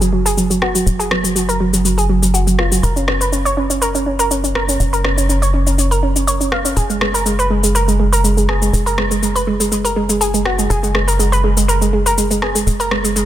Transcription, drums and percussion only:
0.02 cabasa soft
0.26 cabasa medium
0.38 cabasa medium
0.51 cabasa soft
0.62 cross-stick medium
0.75 cabasa medium
0.87 cabasa soft
1.00 cabasa soft
1.11 cross-stick medium
1.25 cabasa medium
1.36 cabasa soft
1.49 cabasa soft
1.74 cabasa medium
1.85 cabasa soft
1.98 cabasa soft
2.23 cabasa medium
2.35 cabasa soft
2.48 cabasa soft
2.59 cross-stick medium
2.72 cabasa medium
2.84 cabasa soft
2.97 cabasa soft
3.08 cross-stick medium
3.21 cabasa medium
3.33 cabasa soft
3.46 cabasa soft
3.71 cabasa medium
3.82 cabasa soft
3.95 cabasa soft
4.20 cabasa medium
4.31 cabasa soft
4.44 cabasa soft
4.55 cross-stick medium
4.69 cabasa medium
4.80 cabasa medium
4.93 cabasa soft
5.05 cross-stick medium
5.18 cabasa medium
5.30 cabasa soft
5.43 cabasa soft
5.67 cabasa medium
5.79 cabasa soft
5.92 cabasa soft
6.16 cabasa medium
6.28 cabasa medium
6.41 cabasa soft
6.52 cross-stick medium
6.65 cabasa medium
6.77 cabasa medium
6.90 cabasa soft
7.01 cross-stick medium
7.15 cabasa medium
7.26 cabasa medium
7.39 cabasa soft
7.64 cabasa medium
7.75 cabasa medium
7.88 cabasa soft
8.13 cabasa medium
8.25 cabasa medium
8.38 cabasa soft
8.49 cross-stick medium
8.62 cabasa medium
8.74 cabasa medium
8.87 cabasa soft
8.98 cross-stick medium
9.11 cabasa medium
9.23 cabasa soft
9.36 cabasa soft
9.61 cabasa medium
9.72 cabasa medium
9.85 cabasa soft
10.10 cabasa medium
10.21 cabasa medium
10.34 cabasa soft
10.46 cross-stick medium
10.59 cabasa medium
10.71 cabasa medium
10.84 cabasa soft
10.95 cross-stick medium
11.08 cabasa medium
11.20 cabasa soft
11.33 cabasa soft
11.57 cabasa medium
11.69 cabasa medium
11.82 cabasa soft
12.06 cabasa medium
12.18 cabasa medium
12.31 cabasa soft
12.42 cross-stick medium
12.56 cabasa medium
12.67 cabasa medium
12.80 cabasa soft
12.91 cross-stick medium
13.05 cabasa medium
13.16 cabasa medium

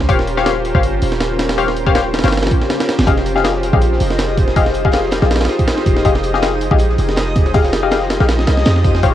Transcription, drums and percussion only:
0.00 snare medium
0.09 kick loud
0.09 open hi-hat medium
0.19 snare soft
0.27 open hi-hat medium
0.38 snare soft
0.46 snare loud
0.46 open hi-hat medium
0.65 open hi-hat medium
0.75 kick loud
0.83 open hi-hat medium
1.02 open hi-hat medium
1.12 snare medium
1.21 snare loud
1.21 open hi-hat medium
1.39 snare loud
1.39 open hi-hat medium
1.49 snare loud
1.49 open hi-hat medium
1.58 open hi-hat medium
1.68 snare soft
1.77 open hi-hat medium
1.87 kick loud
1.95 snare loud
1.95 open hi-hat medium
2.14 snare medium
2.14 open hi-hat medium
2.19 snare medium
2.19 open hi-hat medium
2.24 snare loud
2.24 open hi-hat medium
2.28 snare medium
2.28 open hi-hat medium
2.32 snare medium
2.32 open hi-hat medium
2.37 snare medium
2.37 open hi-hat medium
2.43 snare medium
2.43 open hi-hat medium
2.47 snare medium
2.47 open hi-hat medium
2.51 kick loud
2.51 open hi-hat medium
2.61 snare medium
2.70 snare loud
2.70 open hi-hat medium
2.80 snare loud
2.80 open hi-hat medium
2.89 snare loud
2.89 open hi-hat medium
2.99 snare loud
2.99 open hi-hat medium
3.06 kick loud
3.06 closed hi-hat medium
3.06 open hi-hat medium
3.17 snare soft
3.17 closed hi-hat soft
3.26 closed hi-hat medium
3.26 open hi-hat medium
3.36 snare soft
3.44 snare loud
3.44 closed hi-hat medium
3.44 open hi-hat medium
3.54 snare soft
3.63 closed hi-hat medium
3.63 open hi-hat medium
3.73 kick loud
3.81 closed hi-hat medium
3.81 open hi-hat medium
3.93 snare soft
4.00 closed hi-hat medium
4.00 open hi-hat medium
4.10 snare medium
4.18 snare loud
4.18 closed hi-hat medium
4.18 open hi-hat medium
4.28 closed hi-hat soft
4.37 kick loud
4.37 closed hi-hat medium
4.37 open hi-hat medium
4.48 snare soft
4.56 kick loud
4.56 open hi-hat medium
4.66 snare soft
4.74 closed hi-hat medium
4.74 open hi-hat medium
4.85 kick medium
4.92 snare loud
4.92 closed hi-hat medium
4.92 open hi-hat medium
5.03 snare medium
5.11 snare loud
5.11 closed hi-hat medium
5.11 open hi-hat medium
5.22 snare soft
5.31 snare medium
5.31 closed hi-hat medium
5.31 open hi-hat medium
5.36 snare medium
5.36 open hi-hat medium
5.41 snare medium
5.41 open hi-hat medium
5.45 snare medium
5.45 closed hi-hat medium
5.45 open hi-hat medium
5.49 snare soft
5.59 kick medium
5.59 open hi-hat medium
5.68 snare loud
5.68 closed hi-hat medium
5.68 open hi-hat medium
5.78 snare medium
5.86 kick loud
5.86 closed hi-hat medium
5.86 open hi-hat medium
5.97 snare medium
5.97 closed hi-hat soft
6.05 kick loud
6.05 closed hi-hat medium
6.05 open hi-hat medium
6.15 snare soft
6.15 closed hi-hat soft
6.23 closed hi-hat medium
6.23 open hi-hat medium
6.34 snare soft
6.42 snare loud
6.42 closed hi-hat medium
6.42 open hi-hat medium
6.53 snare soft
6.61 closed hi-hat medium
6.61 open hi-hat medium
6.71 kick loud
6.78 closed hi-hat medium
6.78 open hi-hat medium
6.89 snare soft
6.98 closed hi-hat medium
6.98 open hi-hat medium
7.09 snare medium
7.16 snare loud
7.16 closed hi-hat medium
7.16 open hi-hat medium
7.27 closed hi-hat soft
7.36 kick loud
7.36 closed hi-hat medium
7.36 open hi-hat medium
7.46 snare soft
7.54 kick loud
7.54 open hi-hat medium
7.65 snare soft
7.73 snare loud
7.73 closed hi-hat medium
7.73 open hi-hat medium
7.91 snare loud
7.91 closed hi-hat medium
7.91 open hi-hat medium
8.02 snare medium
8.10 snare loud
8.10 closed hi-hat medium
8.10 open hi-hat medium
8.20 snare soft
8.28 snare loud
8.28 closed hi-hat medium
8.28 open hi-hat medium
8.39 snare medium
8.47 snare loud
8.47 closed hi-hat medium
8.47 open hi-hat medium
8.57 snare medium
8.65 snare loud
8.65 closed hi-hat medium
8.65 open hi-hat medium
8.76 snare medium
8.84 kick loud
8.84 closed hi-hat medium
8.84 open hi-hat medium
8.95 snare medium
8.95 closed hi-hat soft
9.03 kick loud
9.03 closed hi-hat medium
9.03 open hi-hat medium

